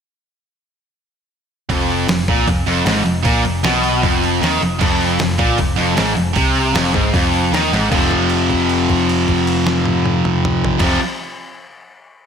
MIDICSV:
0, 0, Header, 1, 4, 480
1, 0, Start_track
1, 0, Tempo, 389610
1, 2092, Time_signature, 4, 2, 24, 8
1, 15108, End_track
2, 0, Start_track
2, 0, Title_t, "Distorted electric guitar"
2, 0, Program_c, 0, 30
2, 2092, Note_on_c, 0, 41, 109
2, 2555, Note_off_c, 0, 41, 0
2, 2570, Note_on_c, 0, 41, 78
2, 2764, Note_off_c, 0, 41, 0
2, 2811, Note_on_c, 0, 46, 100
2, 3046, Note_off_c, 0, 46, 0
2, 3047, Note_on_c, 0, 41, 75
2, 3243, Note_off_c, 0, 41, 0
2, 3292, Note_on_c, 0, 41, 106
2, 3516, Note_off_c, 0, 41, 0
2, 3521, Note_on_c, 0, 44, 101
2, 3747, Note_off_c, 0, 44, 0
2, 3752, Note_on_c, 0, 41, 70
2, 3955, Note_off_c, 0, 41, 0
2, 3993, Note_on_c, 0, 46, 108
2, 4231, Note_on_c, 0, 41, 69
2, 4236, Note_off_c, 0, 46, 0
2, 4434, Note_off_c, 0, 41, 0
2, 4476, Note_on_c, 0, 47, 120
2, 4957, Note_off_c, 0, 47, 0
2, 4957, Note_on_c, 0, 41, 109
2, 5436, Note_off_c, 0, 41, 0
2, 5440, Note_on_c, 0, 51, 98
2, 5678, Note_off_c, 0, 51, 0
2, 5686, Note_on_c, 0, 41, 79
2, 5879, Note_off_c, 0, 41, 0
2, 5932, Note_on_c, 0, 41, 98
2, 6388, Note_off_c, 0, 41, 0
2, 6402, Note_on_c, 0, 41, 73
2, 6596, Note_off_c, 0, 41, 0
2, 6633, Note_on_c, 0, 46, 108
2, 6872, Note_off_c, 0, 46, 0
2, 6878, Note_on_c, 0, 41, 74
2, 7073, Note_off_c, 0, 41, 0
2, 7117, Note_on_c, 0, 41, 107
2, 7352, Note_off_c, 0, 41, 0
2, 7362, Note_on_c, 0, 44, 111
2, 7595, Note_off_c, 0, 44, 0
2, 7603, Note_on_c, 0, 41, 76
2, 7794, Note_off_c, 0, 41, 0
2, 7837, Note_on_c, 0, 48, 105
2, 8309, Note_on_c, 0, 41, 113
2, 8310, Note_off_c, 0, 48, 0
2, 8546, Note_off_c, 0, 41, 0
2, 8550, Note_on_c, 0, 44, 111
2, 8786, Note_off_c, 0, 44, 0
2, 8797, Note_on_c, 0, 41, 104
2, 9268, Note_off_c, 0, 41, 0
2, 9272, Note_on_c, 0, 51, 105
2, 9506, Note_off_c, 0, 51, 0
2, 9516, Note_on_c, 0, 44, 102
2, 9733, Note_off_c, 0, 44, 0
2, 9738, Note_on_c, 0, 41, 92
2, 9763, Note_on_c, 0, 48, 106
2, 9787, Note_on_c, 0, 53, 112
2, 13308, Note_off_c, 0, 41, 0
2, 13313, Note_on_c, 0, 41, 99
2, 13334, Note_off_c, 0, 48, 0
2, 13339, Note_on_c, 0, 48, 100
2, 13355, Note_off_c, 0, 53, 0
2, 13360, Note_on_c, 0, 53, 106
2, 13526, Note_off_c, 0, 41, 0
2, 13540, Note_off_c, 0, 48, 0
2, 13550, Note_off_c, 0, 53, 0
2, 15108, End_track
3, 0, Start_track
3, 0, Title_t, "Picked electric bass"
3, 0, Program_c, 1, 34
3, 2087, Note_on_c, 1, 29, 102
3, 2537, Note_off_c, 1, 29, 0
3, 2558, Note_on_c, 1, 29, 84
3, 2789, Note_off_c, 1, 29, 0
3, 2810, Note_on_c, 1, 34, 91
3, 3035, Note_off_c, 1, 34, 0
3, 3050, Note_on_c, 1, 29, 78
3, 3263, Note_off_c, 1, 29, 0
3, 3271, Note_on_c, 1, 29, 78
3, 3505, Note_off_c, 1, 29, 0
3, 3512, Note_on_c, 1, 32, 97
3, 3745, Note_off_c, 1, 32, 0
3, 3753, Note_on_c, 1, 29, 86
3, 3986, Note_off_c, 1, 29, 0
3, 4004, Note_on_c, 1, 34, 100
3, 4221, Note_off_c, 1, 34, 0
3, 4229, Note_on_c, 1, 29, 75
3, 4463, Note_off_c, 1, 29, 0
3, 4472, Note_on_c, 1, 35, 96
3, 4928, Note_off_c, 1, 35, 0
3, 4968, Note_on_c, 1, 29, 81
3, 5415, Note_off_c, 1, 29, 0
3, 5440, Note_on_c, 1, 39, 103
3, 5648, Note_off_c, 1, 39, 0
3, 5655, Note_on_c, 1, 29, 77
3, 5894, Note_off_c, 1, 29, 0
3, 5929, Note_on_c, 1, 29, 102
3, 6374, Note_off_c, 1, 29, 0
3, 6404, Note_on_c, 1, 29, 76
3, 6625, Note_off_c, 1, 29, 0
3, 6632, Note_on_c, 1, 34, 90
3, 6861, Note_off_c, 1, 34, 0
3, 6876, Note_on_c, 1, 29, 83
3, 7103, Note_off_c, 1, 29, 0
3, 7135, Note_on_c, 1, 29, 82
3, 7352, Note_off_c, 1, 29, 0
3, 7375, Note_on_c, 1, 32, 104
3, 7592, Note_off_c, 1, 32, 0
3, 7606, Note_on_c, 1, 29, 80
3, 7826, Note_off_c, 1, 29, 0
3, 7837, Note_on_c, 1, 36, 105
3, 8283, Note_off_c, 1, 36, 0
3, 8311, Note_on_c, 1, 29, 97
3, 8537, Note_off_c, 1, 29, 0
3, 8552, Note_on_c, 1, 32, 95
3, 8777, Note_off_c, 1, 32, 0
3, 8794, Note_on_c, 1, 29, 89
3, 9240, Note_off_c, 1, 29, 0
3, 9263, Note_on_c, 1, 39, 104
3, 9491, Note_off_c, 1, 39, 0
3, 9505, Note_on_c, 1, 32, 95
3, 9732, Note_off_c, 1, 32, 0
3, 9750, Note_on_c, 1, 29, 103
3, 13198, Note_off_c, 1, 29, 0
3, 13308, Note_on_c, 1, 29, 90
3, 13509, Note_off_c, 1, 29, 0
3, 15108, End_track
4, 0, Start_track
4, 0, Title_t, "Drums"
4, 2091, Note_on_c, 9, 36, 106
4, 2094, Note_on_c, 9, 46, 85
4, 2215, Note_off_c, 9, 36, 0
4, 2217, Note_off_c, 9, 46, 0
4, 2346, Note_on_c, 9, 46, 67
4, 2469, Note_off_c, 9, 46, 0
4, 2568, Note_on_c, 9, 46, 93
4, 2577, Note_on_c, 9, 38, 119
4, 2691, Note_off_c, 9, 46, 0
4, 2701, Note_off_c, 9, 38, 0
4, 2812, Note_on_c, 9, 36, 118
4, 2812, Note_on_c, 9, 46, 66
4, 2935, Note_off_c, 9, 36, 0
4, 2935, Note_off_c, 9, 46, 0
4, 3048, Note_on_c, 9, 46, 81
4, 3051, Note_on_c, 9, 36, 92
4, 3172, Note_off_c, 9, 46, 0
4, 3174, Note_off_c, 9, 36, 0
4, 3289, Note_on_c, 9, 46, 67
4, 3413, Note_off_c, 9, 46, 0
4, 3525, Note_on_c, 9, 46, 88
4, 3534, Note_on_c, 9, 38, 121
4, 3648, Note_off_c, 9, 46, 0
4, 3655, Note_off_c, 9, 38, 0
4, 3655, Note_on_c, 9, 38, 33
4, 3768, Note_on_c, 9, 46, 63
4, 3778, Note_off_c, 9, 38, 0
4, 3892, Note_off_c, 9, 46, 0
4, 4001, Note_on_c, 9, 46, 84
4, 4008, Note_on_c, 9, 36, 111
4, 4124, Note_off_c, 9, 46, 0
4, 4131, Note_off_c, 9, 36, 0
4, 4247, Note_on_c, 9, 46, 61
4, 4371, Note_off_c, 9, 46, 0
4, 4481, Note_on_c, 9, 46, 85
4, 4491, Note_on_c, 9, 38, 124
4, 4604, Note_off_c, 9, 46, 0
4, 4614, Note_off_c, 9, 38, 0
4, 4726, Note_on_c, 9, 46, 61
4, 4849, Note_off_c, 9, 46, 0
4, 4970, Note_on_c, 9, 36, 98
4, 4971, Note_on_c, 9, 46, 78
4, 5093, Note_off_c, 9, 36, 0
4, 5094, Note_off_c, 9, 46, 0
4, 5218, Note_on_c, 9, 46, 55
4, 5341, Note_off_c, 9, 46, 0
4, 5459, Note_on_c, 9, 46, 83
4, 5469, Note_on_c, 9, 38, 118
4, 5582, Note_off_c, 9, 46, 0
4, 5592, Note_off_c, 9, 38, 0
4, 5696, Note_on_c, 9, 46, 56
4, 5819, Note_off_c, 9, 46, 0
4, 5924, Note_on_c, 9, 49, 103
4, 5929, Note_on_c, 9, 36, 108
4, 6047, Note_off_c, 9, 49, 0
4, 6052, Note_off_c, 9, 36, 0
4, 6168, Note_on_c, 9, 46, 64
4, 6291, Note_off_c, 9, 46, 0
4, 6396, Note_on_c, 9, 46, 83
4, 6405, Note_on_c, 9, 38, 112
4, 6519, Note_off_c, 9, 46, 0
4, 6529, Note_off_c, 9, 38, 0
4, 6638, Note_on_c, 9, 46, 67
4, 6642, Note_on_c, 9, 36, 119
4, 6761, Note_off_c, 9, 46, 0
4, 6766, Note_off_c, 9, 36, 0
4, 6874, Note_on_c, 9, 46, 88
4, 6881, Note_on_c, 9, 36, 84
4, 6997, Note_off_c, 9, 46, 0
4, 7004, Note_off_c, 9, 36, 0
4, 7115, Note_on_c, 9, 46, 65
4, 7239, Note_off_c, 9, 46, 0
4, 7355, Note_on_c, 9, 46, 86
4, 7365, Note_on_c, 9, 38, 120
4, 7478, Note_off_c, 9, 46, 0
4, 7488, Note_off_c, 9, 38, 0
4, 7598, Note_on_c, 9, 46, 63
4, 7721, Note_off_c, 9, 46, 0
4, 7831, Note_on_c, 9, 46, 86
4, 7837, Note_on_c, 9, 36, 114
4, 7954, Note_off_c, 9, 46, 0
4, 7960, Note_off_c, 9, 36, 0
4, 8076, Note_on_c, 9, 46, 65
4, 8199, Note_off_c, 9, 46, 0
4, 8314, Note_on_c, 9, 46, 84
4, 8324, Note_on_c, 9, 38, 119
4, 8437, Note_off_c, 9, 46, 0
4, 8447, Note_off_c, 9, 38, 0
4, 8554, Note_on_c, 9, 36, 113
4, 8556, Note_on_c, 9, 46, 64
4, 8677, Note_off_c, 9, 36, 0
4, 8680, Note_off_c, 9, 46, 0
4, 8794, Note_on_c, 9, 36, 105
4, 8797, Note_on_c, 9, 46, 81
4, 8917, Note_off_c, 9, 36, 0
4, 8921, Note_off_c, 9, 46, 0
4, 9038, Note_on_c, 9, 46, 62
4, 9162, Note_off_c, 9, 46, 0
4, 9285, Note_on_c, 9, 46, 81
4, 9295, Note_on_c, 9, 38, 122
4, 9409, Note_off_c, 9, 46, 0
4, 9419, Note_off_c, 9, 38, 0
4, 9528, Note_on_c, 9, 46, 56
4, 9538, Note_on_c, 9, 38, 69
4, 9652, Note_off_c, 9, 46, 0
4, 9661, Note_off_c, 9, 38, 0
4, 9754, Note_on_c, 9, 36, 121
4, 9757, Note_on_c, 9, 49, 101
4, 9877, Note_off_c, 9, 36, 0
4, 9880, Note_off_c, 9, 49, 0
4, 9990, Note_on_c, 9, 36, 63
4, 9992, Note_on_c, 9, 49, 46
4, 10113, Note_off_c, 9, 36, 0
4, 10115, Note_off_c, 9, 49, 0
4, 10219, Note_on_c, 9, 57, 53
4, 10342, Note_off_c, 9, 57, 0
4, 10469, Note_on_c, 9, 36, 69
4, 10472, Note_on_c, 9, 49, 50
4, 10592, Note_off_c, 9, 36, 0
4, 10595, Note_off_c, 9, 49, 0
4, 10710, Note_on_c, 9, 57, 49
4, 10833, Note_off_c, 9, 57, 0
4, 10954, Note_on_c, 9, 36, 66
4, 10960, Note_on_c, 9, 49, 54
4, 11077, Note_off_c, 9, 36, 0
4, 11083, Note_off_c, 9, 49, 0
4, 11202, Note_on_c, 9, 57, 57
4, 11326, Note_off_c, 9, 57, 0
4, 11432, Note_on_c, 9, 36, 64
4, 11432, Note_on_c, 9, 49, 51
4, 11555, Note_off_c, 9, 36, 0
4, 11555, Note_off_c, 9, 49, 0
4, 11670, Note_on_c, 9, 57, 59
4, 11793, Note_off_c, 9, 57, 0
4, 11909, Note_on_c, 9, 38, 89
4, 12032, Note_off_c, 9, 38, 0
4, 12142, Note_on_c, 9, 48, 102
4, 12265, Note_off_c, 9, 48, 0
4, 12389, Note_on_c, 9, 48, 95
4, 12512, Note_off_c, 9, 48, 0
4, 12630, Note_on_c, 9, 47, 99
4, 12753, Note_off_c, 9, 47, 0
4, 12874, Note_on_c, 9, 45, 108
4, 12997, Note_off_c, 9, 45, 0
4, 13115, Note_on_c, 9, 43, 105
4, 13238, Note_off_c, 9, 43, 0
4, 13299, Note_on_c, 9, 49, 97
4, 13307, Note_on_c, 9, 36, 114
4, 13309, Note_on_c, 9, 38, 99
4, 13422, Note_off_c, 9, 49, 0
4, 13431, Note_off_c, 9, 36, 0
4, 13432, Note_off_c, 9, 38, 0
4, 15108, End_track
0, 0, End_of_file